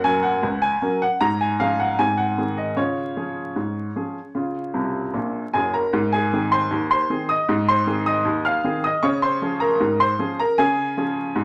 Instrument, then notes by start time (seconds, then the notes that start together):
upright piano
Already playing: F#2 A#3 F#5
0.04 F#3 C#4 A#4 G#5
0.23 F#5
0.43 C#2
0.62 G#5
0.82 F#3 C#4 A#4
1.02 F#5
1.21 G#2 A#5
1.41 G#5
1.60 F3 C#4 G#4 F5
1.80 F#5
1.99 G#2 C4 G#5
2.17 F#5
2.38 D#3 C4 G#4
2.57 D#5
2.76 C#3 F4 C#5
3.16 F3 C#4 G#4
3.56 G#2
3.96 F3 C#4 G#4
4.35 C#3 F4
4.74 C2 C3
5.14 A#1 A#2
5.53 F#1 F#2 G#4 G#5
5.74 A#4 A#5
5.93 G#2
6.13 G#4 G#5
6.33 D#3 C4 G#4
6.52 C5 C6
6.71 D#2
6.91 C5 C6
7.10 D#3 C4 G#4
7.29 D#5 D#6
7.49 G#2
7.68 C5 C6
7.87 D#3 C4 G#4
8.06 D#5 D#6
8.25 D#2
8.45 F5 F6
8.64 D#3 C4 G#4
8.84 D#5 D#6
9.03 C#3 C#5 C#6
9.22 C5 C6
9.42 F3 C#4 G#4
9.60 A#4 A#5
9.80 G#2
10.00 C5 C6
10.19 F3 C#4 G#4
10.39 A#4 A#5
10.58 C#3 G#4 G#5
10.97 F3 C#4 G#4
11.35 G#2